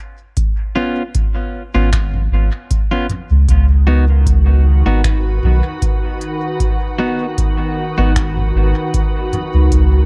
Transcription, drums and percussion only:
0.37 kick, closed hi-hat
1.15 kick, closed hi-hat
1.93 finger snap, kick, closed hi-hat
2.14 mid tom
2.71 kick, closed hi-hat
3.10 closed hi-hat, mid tom
3.49 kick, closed hi-hat
4.26 kick, closed hi-hat
5.04 finger snap, kick, closed hi-hat
5.43 mid tom
5.82 kick, closed hi-hat
6.21 closed hi-hat
6.60 kick, closed hi-hat
7.38 kick, closed hi-hat
8.16 finger snap, kick, closed hi-hat
8.37 mid tom
8.94 kick, closed hi-hat
9.33 closed hi-hat, mid tom
9.72 kick, closed hi-hat

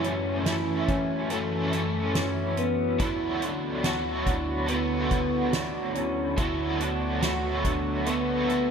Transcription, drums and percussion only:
0.04 closed hi-hat
0.46 snare, closed hi-hat
0.88 kick, closed hi-hat
1.30 closed hi-hat
1.73 closed hi-hat
2.15 snare, closed hi-hat
2.57 closed hi-hat
3.00 kick, closed hi-hat
3.42 closed hi-hat
3.84 snare, closed hi-hat
4.26 kick, closed hi-hat
4.68 closed hi-hat
5.11 kick, closed hi-hat
5.53 snare, closed hi-hat
5.95 closed hi-hat
6.37 kick, closed hi-hat
6.80 closed hi-hat
7.22 snare, closed hi-hat
7.65 kick, closed hi-hat
8.06 closed hi-hat
8.50 closed hi-hat

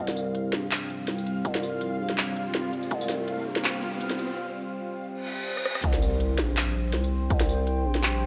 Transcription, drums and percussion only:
0.08 snare, tambourine
0.16 tambourine
0.35 closed hi-hat
0.53 snare
0.71 clap, closed hi-hat
0.90 closed hi-hat
1.08 snare, closed hi-hat
1.18 tambourine
1.27 closed hi-hat
1.45 kick, closed hi-hat
1.55 snare, tambourine
1.63 tambourine
1.81 closed hi-hat
2.10 snare
2.18 clap, closed hi-hat
2.36 closed hi-hat
2.55 snare, closed hi-hat
2.73 closed hi-hat
2.83 tambourine
2.91 kick, closed hi-hat
3.01 tambourine
3.09 snare, tambourine
3.28 closed hi-hat
3.56 snare
3.64 clap, closed hi-hat
3.83 closed hi-hat
4.01 closed hi-hat
4.11 snare, tambourine
4.19 closed hi-hat
5.57 cross-stick
5.65 cross-stick
5.75 cross-stick
5.84 kick, closed hi-hat, crash
5.94 snare, tambourine
6.02 tambourine
6.20 closed hi-hat
6.39 snare
6.57 clap, closed hi-hat
6.93 snare, closed hi-hat
7.04 tambourine
7.30 kick, closed hi-hat
7.41 snare, tambourine
7.49 tambourine
7.67 closed hi-hat
7.95 snare
8.03 clap, closed hi-hat

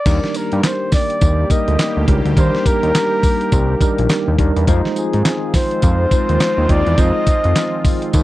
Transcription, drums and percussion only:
0.06 kick, closed hi-hat, crash, tambourine
0.24 snare
0.34 closed hi-hat, tambourine
0.52 closed hi-hat
0.63 snare, clap, closed hi-hat, tambourine
0.92 kick, snare, open hi-hat, tambourine
1.10 closed hi-hat
1.21 kick, closed hi-hat, tambourine
1.50 kick, closed hi-hat, tambourine
1.68 closed hi-hat
1.79 snare, clap, closed hi-hat, tambourine
2.08 kick, closed hi-hat
2.26 closed hi-hat
2.37 kick, closed hi-hat, tambourine
2.55 snare
2.66 kick, closed hi-hat, tambourine
2.83 closed hi-hat
2.95 snare, clap, closed hi-hat, tambourine
3.23 kick, open hi-hat, tambourine
3.41 closed hi-hat
3.52 kick, closed hi-hat, tambourine
3.81 kick, closed hi-hat, tambourine
3.98 closed hi-hat
4.09 snare, clap, closed hi-hat, tambourine
4.39 kick, closed hi-hat
4.56 closed hi-hat
4.67 kick, closed hi-hat, tambourine
4.85 snare
4.96 closed hi-hat, tambourine
5.13 closed hi-hat
5.25 snare, clap, closed hi-hat, tambourine
5.54 kick, snare, open hi-hat, tambourine
5.71 closed hi-hat
5.82 kick, closed hi-hat, tambourine
6.11 kick, closed hi-hat, tambourine
6.29 closed hi-hat
6.40 snare, clap, closed hi-hat, tambourine
6.69 kick, closed hi-hat
6.87 closed hi-hat
6.98 kick, closed hi-hat, tambourine
7.27 kick, closed hi-hat, tambourine
7.44 closed hi-hat
7.56 snare, clap, closed hi-hat, tambourine
7.85 kick, open hi-hat, tambourine
8.02 closed hi-hat
8.13 kick, closed hi-hat, tambourine

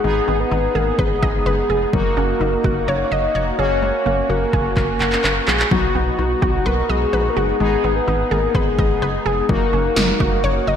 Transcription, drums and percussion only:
0.99 kick
1.23 kick
1.93 kick
2.64 kick
4.53 kick
4.77 kick, clap
5.01 clap
5.12 clap
5.24 clap
5.48 clap
5.60 clap
5.71 kick
6.42 kick
8.55 kick
8.79 kick
9.49 kick
9.96 snare
10.20 kick

